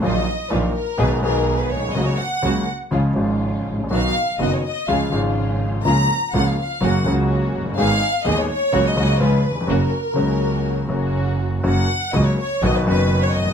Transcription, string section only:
\new Staff \with { instrumentName = "String section" } { \time 4/4 \key fis \major \tempo 4 = 124 <fis dis' eis'>8 r8 <fis dis' eis'>8 r8 <b dis' gis'>8 <b dis' gis'>4. | <ais cis' fis'>8 r8 <ais cis' fis'>8 r8 <gis cis' eis'>8 <gis cis' eis'>4. | <b dis' fis'>8 r8 <b dis' fis'>8 r8 <gis cis' eis'>8 <gis cis' eis'>4. | <ais cis' eis'>8 r8 <ais cis' eis'>8 r8 <ais cis' fis'>8 <ais cis' fis'>4. |
<b dis' gis'>8 r8 <b dis' gis'>8 r8 <ais cis' fis'>8 <ais cis' fis'>8 <gis cis' eis'>8 r8 | <ais cis' fis'>8 r8 <ais cis' fis'>4. <ais cis' fis'>4. | r1 | }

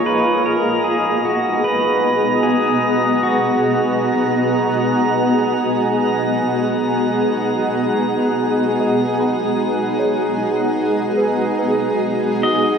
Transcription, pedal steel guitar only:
\new Staff \with { instrumentName = "Pedal steel guitar" } { \time 4/4 \key gis \minor \tempo 4 = 75 b'8 ais'8 gis'8 fis'8 b'4 gis'4 | fis'4. r2 r8 | r1 | r2. r8 dis''8 | }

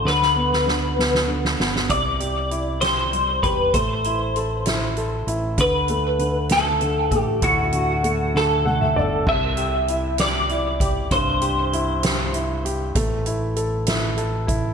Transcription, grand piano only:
\new Staff \with { instrumentName = "Grand piano" } { \time 6/8 \key c \lydian \tempo 4. = 65 << { r2. | r2. | r2. | r2. |
r2 fis''16 e''16 d''8 | r2. | r2. | r2. | } \\ { d8 b8 d8 b8 d8 b8 | c8 g'8 e'8 g'8 g8 g'8 | a8 e'8 a'8 e'8 a'8 e'8 | d8 a8 d8 a8 d8 a8 |
a,8 d8 a8 d8 a8 d8 | c8 g'8 e'8 g'8 e'8 g'8 | g,8 g'8 e'8 g'8 e'8 g'8 | a8 e'8 a'8 e'8 a'8 e'8 | } >> }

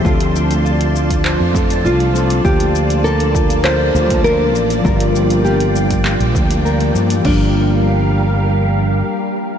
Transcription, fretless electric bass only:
\new Staff \with { instrumentName = "Fretless electric bass" } { \clef bass \time 4/4 \key g \minor \tempo 4 = 100 d,2~ d,16 f,8. c,4 | d,2~ d,8 d,4 a,,8 | g,,2~ g,,16 bes,,16 d,4 g,8 | g,,2. r4 | }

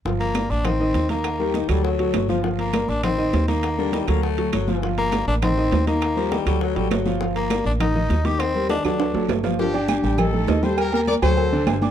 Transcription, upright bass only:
\new Staff \with { instrumentName = "Upright bass" } { \clef bass \time 4/4 \key g \minor \tempo 4 = 201 g,,4. a,,4. ees,4~ | ees,4. d,4. g,,4~ | g,,4. a,,4. ees,4~ | ees,4. d,4. g,,4~ |
g,,4. a,,4. ees,4~ | ees,4. d,4 a,,8 g,,4~ | g,,4. a,,4. ees,4~ | ees,4. d,4 a,,8 g,,4~ |
g,,4. a,,4. ees,4~ | ees,4. d,4. g,,4 | }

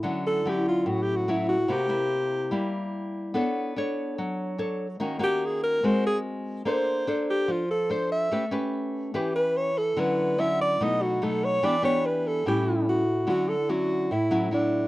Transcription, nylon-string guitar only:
\new Staff \with { instrumentName = "Nylon-string guitar" } { \time 4/4 \key d \major \tempo 4 = 145 << { <fis cis' e'>4 <fis cis' e'>2 <fis cis' e'>8 r8 | <bes e' fis'>8 <bes e'>4. <bes e'>2 | <d' a' cis''>4 <d' a' cis''>2 <d' a' cis''>8 r8 | <bes des' ges'>8 <bes des' ges'>4. <bis fis' ais'>2 |
<d' a' c''>4 <d' a' c''>4. r8 <d' a' c''>4 | <cis' g' b'>8 <cis' g' b'>4. <cis' g' b'>4. r8 | <fis cis' e'>4 <fis cis' e'>4 <fis a dis'>4 <fis a dis'>4 | <b d' g'>8 <b d' g'>4. <g cis' e'>4. r8 |
<fis cis' e'>8 r8 <fis cis' e'>4 r8 <fis cis' e'>8 <fis e'>4 | } \\ { d2 a,2 | c2 g2 | b2 fis2 | ees2 gis2 |
bes2 f2 | a2 e2 | d2 b,2 | e2 a,2 |
d2 a,2 | } >> }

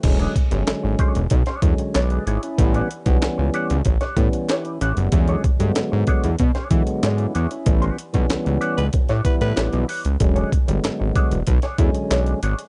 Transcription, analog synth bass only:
\new Staff \with { instrumentName = "Analog synth bass" } { \clef bass \time 4/4 \key e \mixolydian \tempo 4 = 94 e,,8 r16 g,,16 gis,,16 gis,,16 r16 e,,16 b,,16 r16 e,16 r16 b,,8 gis,,16 r16 | a,,8 r16 b,,16 cis,16 cis,16 r16 cis,16 a,,16 r16 a,16 r8. a,,16 fis,,16 | e,8 r16 g,16 gis,16 gis,16 r16 e,16 b,16 r16 e16 r16 gis,8 e,16 r16 | a,,8 r16 b,,16 cis,16 cis,16 r16 cis,16 r16 a,16 r16 a,16 a,,16 b,,16 r16 cis,16 |
e,,8 r16 g,,16 gis,,16 gis,,16 r16 e,,16 b,,16 r16 e,16 r16 b,,8 gis,,16 r16 | }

